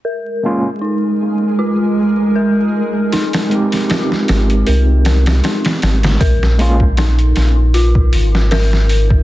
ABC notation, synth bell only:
X:1
M:4/4
L:1/8
Q:"Swing 16ths" 1/4=78
K:Ab
V:1 name="Synth bell"
B2 E2 F2 B2 | E2 F2 B2 E2 | B2 E2 F2 B2 |]